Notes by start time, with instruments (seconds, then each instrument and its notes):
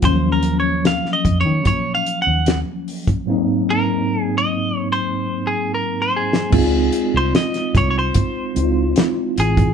0.01 fingered electric bass D#2, tine electric piano F3 A#3 C#4, kick, closed hi-hat
0.05 tine electric piano F#3, clean electric guitar C5
0.32 clean electric guitar A#4
0.43 closed hi-hat
0.60 clean electric guitar C#5
0.85 clean electric guitar F5, snare, closed hi-hat
1.06 snare
1.13 clean electric guitar D#5
1.25 fingered electric bass F2, kick, closed hi-hat
1.41 clean electric guitar C#5
1.46 fingered electric bass D#3
1.65 fingered electric bass A#2, clean electric guitar C#5, kick, closed hi-hat
1.95 clean electric guitar F5
2.06 closed hi-hat
2.22 clean electric guitar F#5
2.27 fingered electric bass D#2
2.46 snare, closed hi-hat
2.88 open hi-hat
3.07 kick, closed hi-hat
3.26 tine electric piano G#2 F#3 A#3 C4
3.30 tine electric piano D#4
3.70 clean electric guitar A#4
4.22 clean electric guitar G#4
4.38 clean electric guitar D#5
4.92 clean electric guitar C5
5.47 clean electric guitar G#4
5.74 clean electric guitar A#4
6.02 clean electric guitar C5
6.16 clean electric guitar G#4
6.33 snare
6.50 fingered electric bass C#2, tine electric piano G#3 C4 D#4 F4, kick, crash
6.93 closed hi-hat
7.14 fingered electric bass C2, clean electric guitar C5
7.35 clean electric guitar D#5, snare, closed hi-hat
7.54 snare, closed hi-hat
7.75 fingered electric bass C2, clean electric guitar C#5, kick, closed hi-hat
7.90 clean electric guitar C#5
7.99 clean electric guitar C5
8.14 kick, closed hi-hat
8.55 fingered electric bass C#2, tine electric piano G#3 C4 D#4 E4, closed hi-hat
8.63 tine electric piano F4
8.96 snare, closed hi-hat
9.38 fingered electric bass A1, clean electric guitar G#4, closed hi-hat
9.57 kick, closed hi-hat